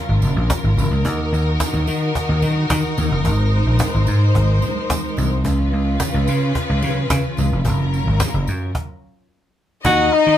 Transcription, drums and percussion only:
0.22 tambourine, muted conga, low conga
0.50 cajon bass, cajon slap, tambourine, high conga
0.77 tambourine, high conga
1.05 cajon bass, tambourine, muted conga
1.34 tambourine
1.60 cajon bass, cajon slap, tambourine, high conga
1.87 tambourine
2.15 cajon bass, tambourine
2.42 tambourine, muted conga, low conga
2.70 cajon bass, cajon slap, tambourine, high conga
2.98 tambourine, high conga
3.25 cajon bass, tambourine, muted conga
3.79 cajon bass, cajon slap, tambourine, high conga
4.07 tambourine
4.35 cajon bass
4.62 tambourine, muted conga, low conga
4.90 cajon bass, cajon slap, tambourine, high conga
5.17 tambourine, high conga
5.44 cajon bass, tambourine, muted conga
6.00 cajon bass, cajon slap, tambourine, high conga
6.28 tambourine
6.55 cajon bass
6.82 tambourine, muted conga, low conga
7.10 cajon bass, cajon slap, tambourine, high conga
7.37 tambourine, high conga
7.65 cajon bass, tambourine, muted conga
7.94 tambourine
8.20 cajon bass, cajon slap, tambourine, high conga
8.47 tambourine
8.75 cajon bass, cajon slap
9.85 cajon bass, tambourine, muted conga

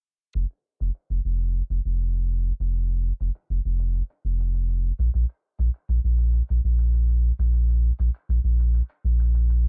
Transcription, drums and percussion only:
0.35 shaker
0.50 shaker
0.80 shaker
0.95 shaker
1.10 shaker
1.40 shaker
1.55 shaker
1.70 shaker
2.00 shaker
2.14 shaker
2.30 shaker
2.60 shaker
2.75 shaker
2.90 shaker
3.20 shaker
3.35 shaker
3.50 shaker
3.80 shaker
3.95 shaker
4.10 shaker
4.40 shaker
4.55 shaker
4.69 shaker
4.99 shaker
5.13 shaker
5.29 shaker
5.59 shaker
5.74 shaker
5.89 shaker
6.18 shaker
6.33 shaker
6.49 shaker
6.79 shaker
6.94 shaker
7.09 shaker
7.39 shaker
7.54 shaker
7.69 shaker
7.99 shaker
8.14 shaker
8.29 shaker
8.59 shaker
8.74 shaker
8.89 shaker
9.19 shaker
9.35 shaker
9.50 shaker

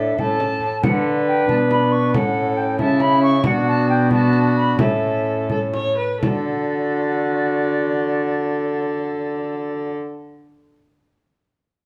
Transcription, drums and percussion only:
0.19 frame drum
0.40 frame drum
0.83 frame drum
1.49 frame drum
1.71 frame drum
2.14 frame drum
2.79 frame drum
3.00 frame drum
3.44 frame drum
4.11 frame drum
4.33 frame drum
4.79 frame drum
5.50 frame drum
5.74 frame drum
6.23 frame drum

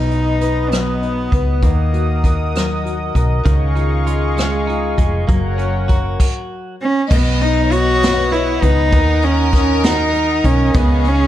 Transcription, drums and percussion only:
0.11 closed hi-hat
0.41 closed hi-hat
0.72 cross-stick, closed hi-hat
1.02 closed hi-hat
1.32 kick, closed hi-hat
1.62 kick, closed hi-hat
1.94 closed hi-hat
2.24 kick, closed hi-hat
2.55 cross-stick, closed hi-hat
2.86 closed hi-hat
3.15 kick, closed hi-hat
3.45 kick, closed hi-hat
3.76 closed hi-hat
4.07 closed hi-hat
4.37 cross-stick, closed hi-hat
4.69 closed hi-hat
4.98 kick, closed hi-hat
5.28 kick, closed hi-hat
5.59 closed hi-hat
5.89 kick, closed hi-hat
6.20 kick, crash
7.11 kick, crash
7.41 closed hi-hat
7.72 closed hi-hat
8.03 snare, closed hi-hat
8.33 closed hi-hat
8.62 kick, closed hi-hat
8.92 kick, closed hi-hat
9.22 closed hi-hat
9.52 kick, snare, closed hi-hat
9.83 snare, closed hi-hat
10.14 closed hi-hat
10.44 kick, closed hi-hat
10.74 kick, closed hi-hat
11.05 closed hi-hat

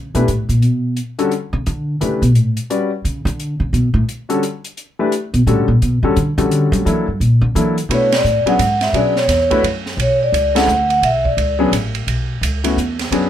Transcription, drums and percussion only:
0.15 closed hi-hat
0.28 closed hi-hat
0.49 closed hi-hat
0.62 closed hi-hat
0.97 closed hi-hat
1.19 closed hi-hat
1.31 closed hi-hat
1.66 closed hi-hat
2.01 closed hi-hat
2.23 closed hi-hat
2.35 closed hi-hat
2.57 closed hi-hat
2.70 closed hi-hat
3.05 closed hi-hat
3.27 closed hi-hat
3.40 closed hi-hat
3.74 closed hi-hat
4.09 closed hi-hat
4.30 closed hi-hat
4.43 closed hi-hat
4.64 closed hi-hat
4.77 closed hi-hat
5.12 closed hi-hat
5.34 closed hi-hat
5.47 closed hi-hat
5.82 closed hi-hat
6.16 closed hi-hat
6.38 closed hi-hat
6.51 closed hi-hat
6.73 closed hi-hat
6.87 closed hi-hat
7.21 closed hi-hat
7.56 closed hi-hat
7.78 closed hi-hat
7.91 ride
8.12 snare, ride
8.25 hi-hat pedal
8.47 ride
8.59 hi-hat pedal, ride
8.81 snare, ride
8.94 ride
9.16 snare
9.29 snare, hi-hat pedal, ride
9.51 kick, ride
9.64 ride
9.86 snare
9.99 ride
10.34 hi-hat pedal, ride
10.56 snare, ride
10.69 hi-hat pedal
10.90 ride
11.03 ride
11.25 kick
11.38 ride
11.73 hi-hat pedal, ride
11.95 ride
12.08 ride
12.43 hi-hat pedal, ride
12.64 ride
12.78 hi-hat pedal
12.99 snare, ride
13.12 ride

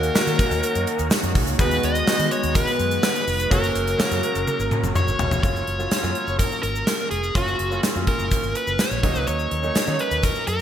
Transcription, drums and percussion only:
0.03 closed hi-hat, shaker
0.15 snare, tambourine, shaker
0.27 closed hi-hat, shaker
0.39 kick, closed hi-hat, shaker
0.51 closed hi-hat, shaker
0.63 closed hi-hat, shaker
0.75 closed hi-hat, shaker
0.87 closed hi-hat, shaker
0.99 closed hi-hat, shaker
1.10 snare, tambourine, shaker
1.23 closed hi-hat, shaker
1.35 kick, open hi-hat, shaker
1.47 closed hi-hat, shaker
1.59 kick, closed hi-hat, shaker
1.71 closed hi-hat, shaker
1.83 closed hi-hat, shaker
1.95 closed hi-hat, shaker
2.07 snare, tambourine, shaker
2.19 closed hi-hat, shaker
2.31 closed hi-hat, shaker
2.43 closed hi-hat, shaker
2.55 kick, closed hi-hat, shaker
2.67 closed hi-hat, shaker
2.79 closed hi-hat, shaker
2.91 closed hi-hat, shaker
3.03 snare, tambourine, shaker
3.15 closed hi-hat, shaker
3.27 open hi-hat, shaker
3.40 closed hi-hat, shaker
3.51 kick, closed hi-hat, shaker
3.63 closed hi-hat, shaker
3.75 closed hi-hat, shaker
3.87 closed hi-hat, shaker
3.99 snare, tambourine, shaker
4.11 closed hi-hat, shaker
4.23 closed hi-hat, shaker
4.35 closed hi-hat, shaker
4.47 high tom, shaker
4.60 shaker
4.71 mid tom, shaker
4.84 mid tom, shaker
4.96 mid tom, shaker
5.08 shaker
5.19 floor tom, shaker
5.31 floor tom, shaker
5.43 kick, closed hi-hat, shaker
5.56 shaker
5.67 closed hi-hat
5.80 shaker
5.91 snare, closed hi-hat, shaker
6.04 shaker
6.15 closed hi-hat
6.27 shaker
6.39 kick, closed hi-hat, shaker
6.52 shaker
6.63 closed hi-hat, shaker
6.75 shaker
6.87 snare, closed hi-hat, shaker
7.00 shaker
7.11 closed hi-hat
7.23 shaker
7.35 kick, closed hi-hat, shaker
7.47 shaker
7.59 closed hi-hat
7.72 shaker
7.83 snare, closed hi-hat, shaker
7.95 shaker
8.07 kick, closed hi-hat
8.19 shaker
8.31 kick, closed hi-hat, shaker
8.43 shaker
8.55 closed hi-hat, shaker
8.67 shaker
8.79 snare, closed hi-hat, shaker
8.91 shaker
9.03 kick, closed hi-hat
9.15 shaker
9.27 closed hi-hat, shaker
9.39 shaker
9.51 closed hi-hat
9.63 shaker
9.75 snare, closed hi-hat, shaker
9.87 shaker
9.99 closed hi-hat
10.11 closed hi-hat, shaker
10.23 kick, closed hi-hat, shaker
10.35 shaker
10.47 closed hi-hat, shaker

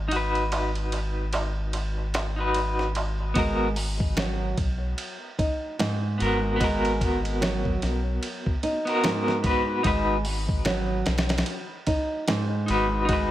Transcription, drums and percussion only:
0.11 ride, darbuka tek
0.35 ride
0.52 ride, darbuka tek
0.75 ride, darbuka tek
0.92 ride, darbuka tek
1.33 snare, ride, darbuka tek
1.57 darbuka tek
1.73 ride, darbuka tek
1.97 darbuka tek
2.14 snare, ride, darbuka tek
2.38 darbuka tek
2.54 ride, darbuka tek
2.79 snare, darbuka tek
2.95 ride, darbuka tek
3.20 darbuka tek
3.35 kick, ride
3.76 open hi-hat
4.00 kick
4.17 snare, ride
4.58 kick, ride
4.98 ride
5.39 kick, ride
5.79 snare, ride
6.20 ride
6.60 kick, ride
6.85 ride
7.01 kick, ride
7.25 ride
7.42 snare, ride
7.65 kick
7.82 snare, ride
8.23 ride
8.46 kick
8.63 ride
8.87 ride
9.04 snare, ride
9.28 snare
9.44 kick, ride
9.84 kick, ride
10.25 open hi-hat
10.49 kick
10.65 snare, ride
11.06 snare, ride
11.18 snare, ride
11.29 snare, ride
11.38 snare, ride
11.46 ride
11.87 kick, ride
12.28 snare, ride
12.68 ride
13.09 kick, ride

